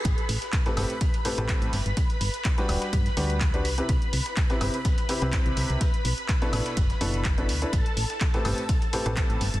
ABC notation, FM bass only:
X:1
M:4/4
L:1/16
Q:"Swing 16ths" 1/4=125
K:Ador
V:1 name="FM bass" clef=bass
A,,, z A,,, z3 G,,, z4 A,,, z A,,, G,,, G,,, | z2 G,,, z3 D,,, z G,, z D,,4 C,, z | C,, z C,, z3 G,,, z4 C,, z C,, C,, C,, | z2 B,,, z3 A,,, z F,,, z F,,,4 D,, z |
A,,, z A,,, z3 G,,, z4 A,,, z A,,, G,,, G,,, |]